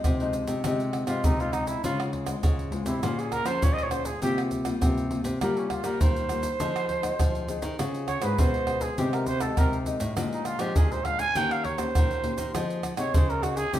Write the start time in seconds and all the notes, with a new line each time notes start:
Already playing: F3 G#3 D#4
0.04 C3, pandeiro, tamborim, shaker, surdo
0.20 F3 G#3 D#4, pandeiro, shaker
0.33 pandeiro, shaker
0.47 C3, pandeiro, shaker, surdo
0.64 C3 F3 G#3 D#4, pandeiro, tamborim, shaker, surdo
0.80 pandeiro, shaker
0.93 pandeiro, tamborim
1.07 C3 F3 G#3 D#4 F4, pandeiro, tamborim, shaker
1.24 C3 D#4, pandeiro, shaker, surdo
1.40 F3 G#3 D#4 F4, pandeiro, shaker
1.53 D#4, pandeiro, tamborim, shaker
1.67 E4, pandeiro, shaker, surdo
1.84 C#3 G#3 C4 F4, pandeiro, shaker, surdo
2.00 pandeiro, tamborim, shaker
2.13 pandeiro, surdo
2.27 G#3 C4 F4, pandeiro, tamborim, shaker, surdo
2.43 G#2 C#3, pandeiro, tamborim, shaker, surdo
2.59 pandeiro, shaker
2.72 G#3 C4 F4, pandeiro
2.86 C3 E4, pandeiro, shaker, surdo
3.03 A#2 A#3 C#4 F4 G#4 C5, pandeiro, tamborim, shaker, surdo
3.19 G#4, pandeiro, shaker
3.32 A#4, pandeiro, tamborim, shaker, surdo
3.45 F3 C#4 G#4 C5, pandeiro, tamborim, shaker
3.62 A#2 F3 C#5, pandeiro, shaker, surdo
3.73 D#5
3.78 pandeiro, shaker
3.83 C#5
3.91 C#4 G#4 C5, pandeiro, tamborim, shaker
4.05 G#4, pandeiro, shaker, surdo
4.22 C3 G3 A#3 F4 G4, pandeiro, shaker, surdo
4.38 pandeiro, tamborim, shaker
4.51 pandeiro, shaker, surdo
4.65 G3 A#3 F4, pandeiro, tamborim, shaker, surdo
4.81 G2 C3, pandeiro, tamborim, shaker, surdo
4.97 pandeiro, shaker
5.11 G3 A#3 F4, pandeiro
5.24 C3, pandeiro, shaker, surdo
5.41 C3 G3 A#3 F4 A#4, pandeiro, tamborim, shaker, surdo
5.57 C#4, pandeiro, shaker
5.70 F4, pandeiro, tamborim, surdo
5.84 G3 A#3 F4 A#4, pandeiro, tamborim, shaker
6.01 G2 D#3 C5, pandeiro, shaker, surdo
6.16 pandeiro, shaker
6.29 G3 A#3 F4, pandeiro, tamborim, shaker
6.43 pandeiro, shaker, surdo
6.60 F3 C4 D#4 G#4, pandeiro, shaker, surdo
6.76 pandeiro, tamborim, shaker
6.89 pandeiro, surdo
7.03 C4 D#4 G#4, pandeiro, tamborim, shaker, surdo
7.19 C3 F3, pandeiro, tamborim, shaker, surdo
7.35 pandeiro, shaker
7.48 C4 D#4 G#4, pandeiro, shaker
7.62 D#3, pandeiro, shaker, surdo
7.79 C#3 C4 F4 G#4, pandeiro, tamborim, shaker, surdo
7.94 pandeiro, shaker
8.08 C#5, pandeiro, tamborim, shaker, surdo
8.22 G#2 C4 F4 G#4 B4, pandeiro, tamborim, shaker
8.38 G#2 B2 C5, pandeiro, shaker, surdo
8.54 pandeiro, shaker
8.67 C4 F4 G#4, pandeiro, tamborim
8.81 G#4, pandeiro, shaker, surdo
8.98 C3 G#3 D#4 G4, pandeiro, shaker, surdo
9.13 A#4, pandeiro, tamborim, shaker
9.26 C5, pandeiro, shaker, surdo
9.40 G#3 D#4 G4 A4, pandeiro, tamborim, shaker, surdo
9.57 C3 A#4, pandeiro, tamborim, shaker, surdo
9.73 pandeiro, shaker
9.86 G#3 D#4 G4, pandeiro, shaker
10.00 A2, pandeiro, shaker, surdo
10.17 A#2 F3 G#3 D4, pandeiro, tamborim, shaker, surdo
10.33 D#4, pandeiro, shaker
10.45 F4, pandeiro, tamborim, shaker
10.59 F3 G#3 D4 G4, pandeiro, tamborim, shaker
10.76 F2 A#2 G#4, pandeiro, shaker, surdo
10.92 C5, pandeiro, shaker
11.05 F3 G#3 D4 F5, pandeiro, tamborim
11.19 G#5, pandeiro, shaker, surdo
11.35 D#3 A#3 C#4 G4 G5, pandeiro, shaker, surdo
11.51 F5, pandeiro, tamborim, shaker
11.64 C#5, pandeiro, surdo
11.78 A#3 C#4 G4 C5, pandeiro, tamborim, shaker, surdo
11.95 A#2 D#3, pandeiro, tamborim, shaker, surdo
12.11 pandeiro, shaker
12.23 A#3 C#4 G4, pandeiro
12.38 D#3, pandeiro, shaker, surdo
12.54 F3 C4 D#4 G#4, pandeiro, tamborim, shaker, surdo
12.70 pandeiro, shaker
12.83 pandeiro, tamborim, shaker, surdo
12.97 C3 C4 D#4 G#4 C#5, pandeiro, tamborim, shaker
13.14 C#3 C5, pandeiro, shaker, surdo
13.30 A#4, pandeiro, shaker
13.42 C4 D#4 F#4 G#4, pandeiro, tamborim, shaker
13.57 G#4, pandeiro, shaker, surdo
13.73 C3 G3 A#3 E4 G4, pandeiro, shaker, surdo